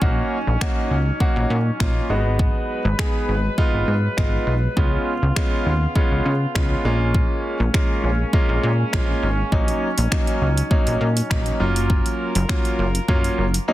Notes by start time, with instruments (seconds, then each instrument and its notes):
Already playing: brass ensemble C#4
0.01 analog synth bass A#1, brass ensemble F#3 D#4, grand piano A#3 C#4 D#4 F#4, kick
0.47 analog synth bass A#1
0.61 grand piano A#3 C#4 D#4 F#4, finger snap, kick
0.91 analog synth bass C#2
1.20 grand piano A#3 C#4 D#4 F#4, kick
1.36 analog synth bass A#1
1.50 analog synth bass A#2
1.80 analog synth bass A#1, grand piano A#3 C#4 D#4 F4, finger snap, kick
2.10 analog synth bass G#1, brass ensemble F#3 G#3 B4, grand piano G#3 B3 D#4 F#4
2.39 kick
2.85 analog synth bass G#1
2.99 grand piano G#3 B3 D#4 G#4, finger snap, kick
3.29 analog synth bass G#1
3.58 grand piano G#3 B3 D#4 F4, kick
3.74 analog synth bass G#1
3.88 analog synth bass G#2
4.17 analog synth bass G#1, grand piano G#3 B3 D#4 F4, finger snap, kick
4.47 analog synth bass B1
4.77 analog synth bass C#2, brass ensemble C#3 B3 F4, grand piano G#3 B3 C#4 F4, kick
5.22 analog synth bass C#2
5.36 grand piano G#3 B3 C#4 F4, finger snap, kick
5.66 analog synth bass D#2
5.96 grand piano G#3 B3 C#4 F4, kick
6.11 analog synth bass C#2
6.26 analog synth bass C#3
6.55 analog synth bass C#2, grand piano G#3 B3 C#4 F4, finger snap, kick
6.85 analog synth bass A#1, grand piano G#3 A#3 C#4 F4, brass ensemble G#3 A#3 C#4
7.14 kick
7.60 analog synth bass A#1
7.74 grand piano G#3 A#3 C#4 F4, finger snap, kick
8.04 analog synth bass A#1
8.33 grand piano G#3 A#3 C#4 F4, kick
8.49 analog synth bass A#1
8.64 analog synth bass A#2
8.93 analog synth bass A#1, grand piano G#3 A#3 C#4 F4, finger snap, kick
9.23 analog synth bass G#1
9.52 analog synth bass A#1, grand piano F#3 A#3 C#4 D#4, brass ensemble F#3 D#4, kick
9.68 closed hi-hat
9.98 analog synth bass A#1, closed hi-hat
10.11 grand piano F#3 A#3 C#4 D#4, finger snap, kick
10.27 closed hi-hat
10.41 analog synth bass C#2
10.57 closed hi-hat
10.71 grand piano F#3 A#3 C#4 D#4, kick
10.87 analog synth bass A#1, closed hi-hat
11.01 analog synth bass A#2
11.17 closed hi-hat
11.30 analog synth bass A#1, grand piano F#3 A#3 C#4 D#4, finger snap, kick
11.46 closed hi-hat
11.60 analog synth bass F#1, grand piano F#3 A#3 C#4 F4, brass ensemble F4 A#4
11.76 closed hi-hat
11.90 kick
12.06 closed hi-hat
12.35 analog synth bass F#1, closed hi-hat
12.49 grand piano F#3 A#3 C#4 F4, finger snap, kick
12.65 closed hi-hat
12.79 analog synth bass F#1
12.95 closed hi-hat
13.08 analog synth bass F#2, grand piano F#3 A#3 C#4 F4, kick
13.24 closed hi-hat
13.38 analog synth bass F#1
13.54 closed hi-hat
13.68 grand piano F#3 A#3 C#4 D#4